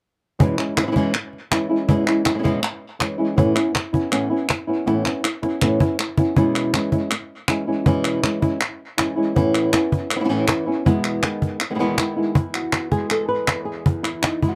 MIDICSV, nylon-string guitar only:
0, 0, Header, 1, 3, 480
1, 0, Start_track
1, 0, Key_signature, 4, "major"
1, 0, Tempo, 374065
1, 508, Time_signature, 4, 2, 24, 8
1, 18672, End_track
2, 0, Start_track
2, 0, Title_t, "Nylon-string guitar"
2, 0, Program_c, 0, 24
2, 501, Note_on_c, 0, 40, 77
2, 508, Note_on_c, 0, 47, 71
2, 509, Note_on_c, 0, 52, 84
2, 516, Note_on_c, 0, 56, 79
2, 524, Note_on_c, 0, 61, 77
2, 526, Note_on_c, 0, 64, 87
2, 726, Note_off_c, 0, 64, 0
2, 734, Note_off_c, 0, 40, 0
2, 737, Note_off_c, 0, 47, 0
2, 737, Note_off_c, 0, 61, 0
2, 738, Note_off_c, 0, 52, 0
2, 741, Note_off_c, 0, 56, 0
2, 741, Note_on_c, 0, 64, 52
2, 753, Note_on_c, 0, 61, 47
2, 759, Note_on_c, 0, 56, 39
2, 766, Note_on_c, 0, 52, 37
2, 966, Note_off_c, 0, 64, 0
2, 979, Note_off_c, 0, 61, 0
2, 982, Note_off_c, 0, 56, 0
2, 982, Note_on_c, 0, 64, 47
2, 985, Note_off_c, 0, 52, 0
2, 993, Note_on_c, 0, 61, 47
2, 997, Note_on_c, 0, 56, 48
2, 1009, Note_on_c, 0, 52, 39
2, 1049, Note_off_c, 0, 52, 0
2, 1050, Note_off_c, 0, 56, 0
2, 1057, Note_off_c, 0, 61, 0
2, 1058, Note_off_c, 0, 64, 0
2, 1060, Note_on_c, 0, 47, 43
2, 1064, Note_on_c, 0, 52, 44
2, 1065, Note_on_c, 0, 56, 48
2, 1072, Note_on_c, 0, 61, 47
2, 1074, Note_on_c, 0, 64, 52
2, 1103, Note_off_c, 0, 47, 0
2, 1106, Note_off_c, 0, 52, 0
2, 1110, Note_off_c, 0, 56, 0
2, 1116, Note_off_c, 0, 61, 0
2, 1116, Note_off_c, 0, 64, 0
2, 1118, Note_on_c, 0, 47, 48
2, 1122, Note_on_c, 0, 52, 62
2, 1125, Note_on_c, 0, 56, 56
2, 1131, Note_on_c, 0, 61, 59
2, 1132, Note_on_c, 0, 64, 58
2, 1160, Note_off_c, 0, 47, 0
2, 1163, Note_off_c, 0, 52, 0
2, 1169, Note_off_c, 0, 56, 0
2, 1170, Note_off_c, 0, 61, 0
2, 1172, Note_off_c, 0, 64, 0
2, 1176, Note_on_c, 0, 47, 55
2, 1179, Note_on_c, 0, 52, 70
2, 1184, Note_on_c, 0, 56, 62
2, 1186, Note_on_c, 0, 61, 67
2, 1187, Note_on_c, 0, 64, 64
2, 1220, Note_off_c, 0, 47, 0
2, 1224, Note_off_c, 0, 56, 0
2, 1226, Note_off_c, 0, 52, 0
2, 1230, Note_off_c, 0, 61, 0
2, 1231, Note_off_c, 0, 64, 0
2, 1232, Note_on_c, 0, 40, 59
2, 1235, Note_on_c, 0, 47, 79
2, 1239, Note_on_c, 0, 56, 80
2, 1241, Note_on_c, 0, 52, 78
2, 1246, Note_on_c, 0, 61, 77
2, 1247, Note_on_c, 0, 64, 71
2, 1457, Note_off_c, 0, 40, 0
2, 1459, Note_off_c, 0, 47, 0
2, 1461, Note_off_c, 0, 56, 0
2, 1462, Note_off_c, 0, 52, 0
2, 1464, Note_off_c, 0, 61, 0
2, 1465, Note_off_c, 0, 64, 0
2, 1938, Note_on_c, 0, 52, 56
2, 1948, Note_on_c, 0, 56, 54
2, 1954, Note_on_c, 0, 61, 54
2, 1960, Note_on_c, 0, 64, 64
2, 2159, Note_off_c, 0, 64, 0
2, 2165, Note_off_c, 0, 61, 0
2, 2168, Note_off_c, 0, 52, 0
2, 2174, Note_off_c, 0, 56, 0
2, 2175, Note_on_c, 0, 64, 58
2, 2180, Note_on_c, 0, 61, 47
2, 2188, Note_on_c, 0, 56, 46
2, 2195, Note_on_c, 0, 52, 40
2, 2406, Note_off_c, 0, 64, 0
2, 2409, Note_off_c, 0, 52, 0
2, 2409, Note_off_c, 0, 61, 0
2, 2413, Note_off_c, 0, 56, 0
2, 2413, Note_on_c, 0, 40, 77
2, 2415, Note_on_c, 0, 47, 71
2, 2424, Note_on_c, 0, 52, 81
2, 2428, Note_on_c, 0, 56, 80
2, 2434, Note_on_c, 0, 61, 76
2, 2436, Note_on_c, 0, 64, 93
2, 2636, Note_off_c, 0, 64, 0
2, 2645, Note_off_c, 0, 40, 0
2, 2646, Note_off_c, 0, 47, 0
2, 2649, Note_off_c, 0, 61, 0
2, 2651, Note_off_c, 0, 52, 0
2, 2651, Note_on_c, 0, 64, 51
2, 2653, Note_off_c, 0, 56, 0
2, 2664, Note_on_c, 0, 61, 40
2, 2669, Note_on_c, 0, 56, 50
2, 2679, Note_on_c, 0, 52, 41
2, 2867, Note_off_c, 0, 64, 0
2, 2875, Note_off_c, 0, 61, 0
2, 2881, Note_off_c, 0, 56, 0
2, 2883, Note_on_c, 0, 64, 55
2, 2891, Note_on_c, 0, 61, 47
2, 2892, Note_off_c, 0, 52, 0
2, 2896, Note_on_c, 0, 56, 42
2, 2907, Note_on_c, 0, 52, 43
2, 2993, Note_off_c, 0, 52, 0
2, 2998, Note_off_c, 0, 56, 0
2, 3003, Note_off_c, 0, 61, 0
2, 3005, Note_on_c, 0, 47, 42
2, 3006, Note_off_c, 0, 64, 0
2, 3008, Note_on_c, 0, 52, 48
2, 3013, Note_on_c, 0, 56, 49
2, 3018, Note_on_c, 0, 61, 46
2, 3021, Note_on_c, 0, 64, 47
2, 3047, Note_off_c, 0, 47, 0
2, 3050, Note_off_c, 0, 52, 0
2, 3053, Note_off_c, 0, 56, 0
2, 3059, Note_off_c, 0, 61, 0
2, 3062, Note_on_c, 0, 47, 52
2, 3064, Note_off_c, 0, 64, 0
2, 3066, Note_on_c, 0, 52, 50
2, 3069, Note_on_c, 0, 56, 63
2, 3074, Note_on_c, 0, 61, 63
2, 3079, Note_on_c, 0, 64, 59
2, 3110, Note_off_c, 0, 47, 0
2, 3114, Note_off_c, 0, 52, 0
2, 3116, Note_off_c, 0, 56, 0
2, 3119, Note_on_c, 0, 40, 70
2, 3120, Note_off_c, 0, 61, 0
2, 3123, Note_off_c, 0, 64, 0
2, 3125, Note_on_c, 0, 47, 78
2, 3129, Note_on_c, 0, 52, 72
2, 3131, Note_on_c, 0, 56, 74
2, 3135, Note_on_c, 0, 61, 70
2, 3139, Note_on_c, 0, 64, 73
2, 3348, Note_off_c, 0, 47, 0
2, 3349, Note_off_c, 0, 40, 0
2, 3351, Note_off_c, 0, 52, 0
2, 3355, Note_off_c, 0, 56, 0
2, 3357, Note_off_c, 0, 64, 0
2, 3358, Note_off_c, 0, 61, 0
2, 3840, Note_on_c, 0, 52, 57
2, 3849, Note_on_c, 0, 56, 58
2, 3856, Note_on_c, 0, 61, 57
2, 3866, Note_on_c, 0, 64, 63
2, 4065, Note_off_c, 0, 64, 0
2, 4076, Note_off_c, 0, 52, 0
2, 4078, Note_off_c, 0, 61, 0
2, 4080, Note_on_c, 0, 64, 53
2, 4081, Note_off_c, 0, 56, 0
2, 4093, Note_on_c, 0, 61, 44
2, 4099, Note_on_c, 0, 56, 47
2, 4107, Note_on_c, 0, 52, 44
2, 4310, Note_off_c, 0, 52, 0
2, 4316, Note_off_c, 0, 64, 0
2, 4317, Note_on_c, 0, 45, 72
2, 4323, Note_off_c, 0, 61, 0
2, 4325, Note_on_c, 0, 52, 75
2, 4326, Note_off_c, 0, 56, 0
2, 4331, Note_on_c, 0, 59, 83
2, 4338, Note_on_c, 0, 61, 81
2, 4341, Note_on_c, 0, 64, 80
2, 4542, Note_off_c, 0, 64, 0
2, 4554, Note_off_c, 0, 45, 0
2, 4555, Note_off_c, 0, 61, 0
2, 4557, Note_on_c, 0, 64, 49
2, 4558, Note_off_c, 0, 52, 0
2, 4561, Note_off_c, 0, 59, 0
2, 4570, Note_on_c, 0, 61, 45
2, 4580, Note_on_c, 0, 59, 43
2, 4794, Note_off_c, 0, 59, 0
2, 4794, Note_off_c, 0, 64, 0
2, 4796, Note_off_c, 0, 61, 0
2, 5041, Note_on_c, 0, 64, 45
2, 5052, Note_on_c, 0, 61, 40
2, 5062, Note_on_c, 0, 59, 39
2, 5273, Note_off_c, 0, 59, 0
2, 5275, Note_off_c, 0, 64, 0
2, 5277, Note_on_c, 0, 45, 73
2, 5279, Note_on_c, 0, 52, 64
2, 5281, Note_off_c, 0, 61, 0
2, 5288, Note_on_c, 0, 59, 70
2, 5296, Note_on_c, 0, 61, 76
2, 5296, Note_on_c, 0, 64, 74
2, 5501, Note_off_c, 0, 64, 0
2, 5513, Note_off_c, 0, 45, 0
2, 5514, Note_off_c, 0, 52, 0
2, 5516, Note_on_c, 0, 64, 49
2, 5517, Note_off_c, 0, 61, 0
2, 5519, Note_off_c, 0, 59, 0
2, 5532, Note_on_c, 0, 61, 49
2, 5540, Note_on_c, 0, 59, 41
2, 5753, Note_off_c, 0, 64, 0
2, 5755, Note_off_c, 0, 59, 0
2, 5756, Note_off_c, 0, 61, 0
2, 5997, Note_on_c, 0, 64, 50
2, 6012, Note_on_c, 0, 61, 49
2, 6022, Note_on_c, 0, 59, 49
2, 6232, Note_off_c, 0, 59, 0
2, 6233, Note_off_c, 0, 64, 0
2, 6237, Note_on_c, 0, 45, 69
2, 6240, Note_off_c, 0, 61, 0
2, 6244, Note_on_c, 0, 52, 75
2, 6248, Note_on_c, 0, 59, 81
2, 6254, Note_on_c, 0, 61, 79
2, 6259, Note_on_c, 0, 64, 85
2, 6466, Note_off_c, 0, 64, 0
2, 6473, Note_off_c, 0, 45, 0
2, 6476, Note_off_c, 0, 52, 0
2, 6478, Note_off_c, 0, 59, 0
2, 6478, Note_off_c, 0, 61, 0
2, 6481, Note_on_c, 0, 64, 46
2, 6494, Note_on_c, 0, 61, 44
2, 6505, Note_on_c, 0, 59, 40
2, 6715, Note_off_c, 0, 64, 0
2, 6716, Note_off_c, 0, 61, 0
2, 6718, Note_off_c, 0, 59, 0
2, 6960, Note_on_c, 0, 64, 55
2, 6977, Note_on_c, 0, 61, 46
2, 6989, Note_on_c, 0, 59, 32
2, 7195, Note_off_c, 0, 64, 0
2, 7201, Note_off_c, 0, 59, 0
2, 7201, Note_on_c, 0, 45, 72
2, 7203, Note_off_c, 0, 61, 0
2, 7209, Note_on_c, 0, 52, 70
2, 7216, Note_on_c, 0, 59, 68
2, 7219, Note_on_c, 0, 61, 82
2, 7224, Note_on_c, 0, 64, 72
2, 7435, Note_off_c, 0, 45, 0
2, 7437, Note_off_c, 0, 64, 0
2, 7439, Note_off_c, 0, 52, 0
2, 7442, Note_off_c, 0, 59, 0
2, 7444, Note_off_c, 0, 61, 0
2, 7452, Note_on_c, 0, 64, 58
2, 7465, Note_on_c, 0, 61, 51
2, 7475, Note_on_c, 0, 59, 42
2, 7680, Note_off_c, 0, 59, 0
2, 7680, Note_off_c, 0, 61, 0
2, 7681, Note_off_c, 0, 64, 0
2, 7929, Note_on_c, 0, 64, 52
2, 7944, Note_on_c, 0, 61, 47
2, 7952, Note_on_c, 0, 59, 46
2, 8159, Note_off_c, 0, 64, 0
2, 8159, Note_on_c, 0, 40, 73
2, 8165, Note_on_c, 0, 47, 80
2, 8167, Note_off_c, 0, 61, 0
2, 8170, Note_off_c, 0, 59, 0
2, 8171, Note_on_c, 0, 52, 70
2, 8176, Note_on_c, 0, 56, 73
2, 8180, Note_on_c, 0, 61, 72
2, 8185, Note_on_c, 0, 64, 74
2, 8631, Note_off_c, 0, 52, 0
2, 8634, Note_off_c, 0, 40, 0
2, 8637, Note_off_c, 0, 47, 0
2, 8643, Note_off_c, 0, 56, 0
2, 8644, Note_off_c, 0, 61, 0
2, 8646, Note_on_c, 0, 52, 53
2, 8647, Note_off_c, 0, 64, 0
2, 8656, Note_on_c, 0, 56, 55
2, 8666, Note_on_c, 0, 61, 59
2, 8670, Note_on_c, 0, 64, 60
2, 8869, Note_off_c, 0, 64, 0
2, 8876, Note_off_c, 0, 61, 0
2, 8878, Note_off_c, 0, 52, 0
2, 8882, Note_off_c, 0, 56, 0
2, 8884, Note_on_c, 0, 64, 50
2, 8891, Note_on_c, 0, 61, 46
2, 8900, Note_on_c, 0, 56, 40
2, 8905, Note_on_c, 0, 52, 41
2, 9115, Note_off_c, 0, 52, 0
2, 9117, Note_off_c, 0, 64, 0
2, 9118, Note_off_c, 0, 56, 0
2, 9120, Note_off_c, 0, 61, 0
2, 9608, Note_on_c, 0, 64, 51
2, 9615, Note_on_c, 0, 61, 49
2, 9625, Note_on_c, 0, 56, 47
2, 9630, Note_on_c, 0, 52, 46
2, 9827, Note_off_c, 0, 64, 0
2, 9837, Note_off_c, 0, 61, 0
2, 9843, Note_on_c, 0, 64, 45
2, 9847, Note_off_c, 0, 56, 0
2, 9850, Note_off_c, 0, 52, 0
2, 9852, Note_on_c, 0, 61, 48
2, 9863, Note_on_c, 0, 56, 44
2, 9865, Note_on_c, 0, 52, 38
2, 10075, Note_off_c, 0, 52, 0
2, 10076, Note_off_c, 0, 64, 0
2, 10077, Note_on_c, 0, 40, 69
2, 10081, Note_off_c, 0, 56, 0
2, 10081, Note_off_c, 0, 61, 0
2, 10085, Note_on_c, 0, 47, 75
2, 10091, Note_on_c, 0, 52, 75
2, 10096, Note_on_c, 0, 56, 81
2, 10099, Note_on_c, 0, 61, 92
2, 10104, Note_on_c, 0, 64, 78
2, 10541, Note_off_c, 0, 52, 0
2, 10553, Note_off_c, 0, 56, 0
2, 10554, Note_off_c, 0, 40, 0
2, 10557, Note_off_c, 0, 47, 0
2, 10557, Note_on_c, 0, 52, 50
2, 10559, Note_off_c, 0, 61, 0
2, 10567, Note_off_c, 0, 64, 0
2, 10568, Note_on_c, 0, 56, 62
2, 10574, Note_on_c, 0, 61, 52
2, 10584, Note_on_c, 0, 64, 61
2, 10786, Note_off_c, 0, 64, 0
2, 10793, Note_off_c, 0, 52, 0
2, 10793, Note_off_c, 0, 61, 0
2, 10799, Note_off_c, 0, 56, 0
2, 10801, Note_on_c, 0, 64, 51
2, 10809, Note_on_c, 0, 61, 44
2, 10817, Note_on_c, 0, 56, 39
2, 10826, Note_on_c, 0, 52, 38
2, 11028, Note_off_c, 0, 52, 0
2, 11033, Note_off_c, 0, 56, 0
2, 11033, Note_off_c, 0, 64, 0
2, 11037, Note_off_c, 0, 61, 0
2, 11518, Note_on_c, 0, 64, 54
2, 11529, Note_on_c, 0, 61, 52
2, 11540, Note_on_c, 0, 56, 43
2, 11542, Note_on_c, 0, 52, 44
2, 11740, Note_off_c, 0, 64, 0
2, 11753, Note_off_c, 0, 61, 0
2, 11755, Note_on_c, 0, 64, 48
2, 11759, Note_off_c, 0, 56, 0
2, 11763, Note_off_c, 0, 52, 0
2, 11768, Note_on_c, 0, 61, 53
2, 11775, Note_on_c, 0, 56, 48
2, 11779, Note_on_c, 0, 52, 44
2, 11990, Note_off_c, 0, 52, 0
2, 11993, Note_off_c, 0, 64, 0
2, 11996, Note_on_c, 0, 45, 71
2, 12000, Note_off_c, 0, 61, 0
2, 12003, Note_off_c, 0, 56, 0
2, 12005, Note_on_c, 0, 52, 67
2, 12012, Note_on_c, 0, 59, 77
2, 12016, Note_on_c, 0, 61, 79
2, 12024, Note_on_c, 0, 64, 76
2, 12468, Note_off_c, 0, 64, 0
2, 12474, Note_off_c, 0, 45, 0
2, 12478, Note_off_c, 0, 52, 0
2, 12480, Note_off_c, 0, 61, 0
2, 12482, Note_off_c, 0, 59, 0
2, 12483, Note_on_c, 0, 64, 53
2, 12496, Note_on_c, 0, 61, 49
2, 12505, Note_on_c, 0, 59, 44
2, 12958, Note_off_c, 0, 59, 0
2, 12958, Note_off_c, 0, 64, 0
2, 12960, Note_off_c, 0, 61, 0
2, 13027, Note_on_c, 0, 52, 49
2, 13037, Note_on_c, 0, 59, 56
2, 13040, Note_on_c, 0, 61, 52
2, 13046, Note_on_c, 0, 64, 65
2, 13071, Note_off_c, 0, 52, 0
2, 13077, Note_off_c, 0, 59, 0
2, 13081, Note_off_c, 0, 61, 0
2, 13086, Note_on_c, 0, 52, 61
2, 13087, Note_off_c, 0, 64, 0
2, 13092, Note_on_c, 0, 59, 70
2, 13097, Note_on_c, 0, 61, 59
2, 13102, Note_on_c, 0, 64, 74
2, 13128, Note_off_c, 0, 52, 0
2, 13135, Note_off_c, 0, 59, 0
2, 13141, Note_off_c, 0, 61, 0
2, 13143, Note_off_c, 0, 64, 0
2, 13143, Note_on_c, 0, 52, 76
2, 13150, Note_on_c, 0, 59, 74
2, 13157, Note_on_c, 0, 61, 86
2, 13158, Note_on_c, 0, 64, 83
2, 13191, Note_off_c, 0, 52, 0
2, 13195, Note_off_c, 0, 59, 0
2, 13198, Note_off_c, 0, 61, 0
2, 13202, Note_on_c, 0, 45, 76
2, 13204, Note_off_c, 0, 64, 0
2, 13206, Note_on_c, 0, 52, 82
2, 13210, Note_on_c, 0, 59, 80
2, 13213, Note_on_c, 0, 61, 87
2, 13219, Note_on_c, 0, 64, 97
2, 13426, Note_off_c, 0, 52, 0
2, 13437, Note_off_c, 0, 45, 0
2, 13439, Note_off_c, 0, 59, 0
2, 13442, Note_on_c, 0, 52, 58
2, 13443, Note_off_c, 0, 61, 0
2, 13446, Note_off_c, 0, 64, 0
2, 13454, Note_on_c, 0, 59, 59
2, 13458, Note_on_c, 0, 61, 56
2, 13465, Note_on_c, 0, 64, 59
2, 13665, Note_off_c, 0, 64, 0
2, 13677, Note_off_c, 0, 52, 0
2, 13680, Note_on_c, 0, 64, 56
2, 13681, Note_off_c, 0, 61, 0
2, 13683, Note_off_c, 0, 59, 0
2, 13696, Note_on_c, 0, 61, 50
2, 13707, Note_on_c, 0, 59, 39
2, 13917, Note_off_c, 0, 64, 0
2, 13925, Note_off_c, 0, 61, 0
2, 13925, Note_on_c, 0, 40, 70
2, 13930, Note_off_c, 0, 59, 0
2, 13930, Note_on_c, 0, 47, 82
2, 13939, Note_on_c, 0, 56, 85
2, 13945, Note_on_c, 0, 59, 79
2, 13947, Note_on_c, 0, 64, 77
2, 14400, Note_off_c, 0, 40, 0
2, 14400, Note_off_c, 0, 59, 0
2, 14402, Note_off_c, 0, 47, 0
2, 14407, Note_off_c, 0, 56, 0
2, 14411, Note_off_c, 0, 64, 0
2, 14415, Note_on_c, 0, 59, 54
2, 14423, Note_on_c, 0, 56, 48
2, 14430, Note_on_c, 0, 51, 40
2, 14881, Note_off_c, 0, 51, 0
2, 14882, Note_off_c, 0, 59, 0
2, 14884, Note_off_c, 0, 56, 0
2, 15014, Note_on_c, 0, 47, 48
2, 15019, Note_on_c, 0, 51, 54
2, 15022, Note_on_c, 0, 56, 48
2, 15023, Note_on_c, 0, 59, 56
2, 15031, Note_on_c, 0, 64, 51
2, 15056, Note_off_c, 0, 47, 0
2, 15062, Note_off_c, 0, 51, 0
2, 15065, Note_off_c, 0, 56, 0
2, 15068, Note_off_c, 0, 59, 0
2, 15071, Note_on_c, 0, 47, 58
2, 15072, Note_off_c, 0, 64, 0
2, 15077, Note_on_c, 0, 51, 61
2, 15080, Note_on_c, 0, 56, 68
2, 15083, Note_on_c, 0, 59, 70
2, 15087, Note_on_c, 0, 64, 74
2, 15119, Note_off_c, 0, 51, 0
2, 15120, Note_off_c, 0, 47, 0
2, 15123, Note_off_c, 0, 56, 0
2, 15127, Note_off_c, 0, 64, 0
2, 15129, Note_off_c, 0, 59, 0
2, 15130, Note_on_c, 0, 40, 81
2, 15135, Note_on_c, 0, 47, 75
2, 15135, Note_on_c, 0, 51, 79
2, 15138, Note_on_c, 0, 56, 83
2, 15143, Note_on_c, 0, 64, 90
2, 15144, Note_on_c, 0, 59, 92
2, 15350, Note_off_c, 0, 51, 0
2, 15360, Note_off_c, 0, 56, 0
2, 15363, Note_off_c, 0, 40, 0
2, 15366, Note_off_c, 0, 47, 0
2, 15366, Note_off_c, 0, 59, 0
2, 15366, Note_on_c, 0, 51, 52
2, 15370, Note_off_c, 0, 64, 0
2, 15376, Note_on_c, 0, 56, 53
2, 15381, Note_on_c, 0, 59, 59
2, 15385, Note_on_c, 0, 64, 64
2, 15595, Note_off_c, 0, 64, 0
2, 15602, Note_off_c, 0, 51, 0
2, 15604, Note_off_c, 0, 59, 0
2, 15607, Note_off_c, 0, 56, 0
2, 15610, Note_on_c, 0, 64, 47
2, 15620, Note_on_c, 0, 59, 46
2, 15628, Note_on_c, 0, 56, 44
2, 15633, Note_on_c, 0, 51, 42
2, 15844, Note_off_c, 0, 64, 0
2, 15849, Note_off_c, 0, 59, 0
2, 15853, Note_off_c, 0, 56, 0
2, 15856, Note_off_c, 0, 51, 0
2, 15857, Note_on_c, 0, 40, 65
2, 15862, Note_on_c, 0, 64, 72
2, 16104, Note_on_c, 0, 66, 70
2, 16345, Note_on_c, 0, 59, 40
2, 16570, Note_off_c, 0, 64, 0
2, 16572, Note_on_c, 0, 56, 51
2, 16575, Note_on_c, 0, 68, 86
2, 16816, Note_off_c, 0, 68, 0
2, 16822, Note_on_c, 0, 69, 97
2, 17043, Note_off_c, 0, 69, 0
2, 17048, Note_on_c, 0, 71, 92
2, 17065, Note_off_c, 0, 66, 0
2, 17290, Note_off_c, 0, 40, 0
2, 17305, Note_on_c, 0, 40, 52
2, 17513, Note_off_c, 0, 71, 0
2, 17518, Note_on_c, 0, 68, 76
2, 17755, Note_off_c, 0, 56, 0
2, 17779, Note_off_c, 0, 40, 0
2, 17794, Note_on_c, 0, 40, 61
2, 18001, Note_off_c, 0, 68, 0
2, 18006, Note_on_c, 0, 64, 71
2, 18251, Note_on_c, 0, 63, 77
2, 18493, Note_off_c, 0, 64, 0
2, 18508, Note_on_c, 0, 64, 76
2, 18517, Note_on_c, 0, 56, 56
2, 18584, Note_off_c, 0, 63, 0
2, 18589, Note_on_c, 0, 66, 62
2, 18654, Note_off_c, 0, 64, 0
2, 18672, Note_off_c, 0, 40, 0
2, 18672, Note_off_c, 0, 56, 0
2, 18672, Note_off_c, 0, 59, 0
2, 18672, Note_off_c, 0, 66, 0
2, 18672, End_track
3, 0, Start_track
3, 0, Title_t, "Muted nylon-string guitar strokes"
3, 1473, Note_on_c, 9, 29, 58
3, 1602, Note_off_c, 9, 29, 0
3, 3363, Note_on_c, 9, 29, 60
3, 3491, Note_off_c, 9, 29, 0
3, 4799, Note_on_c, 9, 29, 67
3, 4927, Note_off_c, 9, 29, 0
3, 5766, Note_on_c, 9, 29, 66
3, 5894, Note_off_c, 9, 29, 0
3, 6722, Note_on_c, 9, 29, 53
3, 6851, Note_off_c, 9, 29, 0
3, 7686, Note_on_c, 9, 29, 61
3, 7814, Note_off_c, 9, 29, 0
3, 9129, Note_on_c, 9, 29, 56
3, 9258, Note_off_c, 9, 29, 0
3, 11039, Note_on_c, 9, 29, 55
3, 11168, Note_off_c, 9, 29, 0
3, 12965, Note_on_c, 9, 29, 59
3, 13093, Note_off_c, 9, 29, 0
3, 14889, Note_on_c, 9, 29, 58
3, 15017, Note_off_c, 9, 29, 0
3, 18672, End_track
0, 0, End_of_file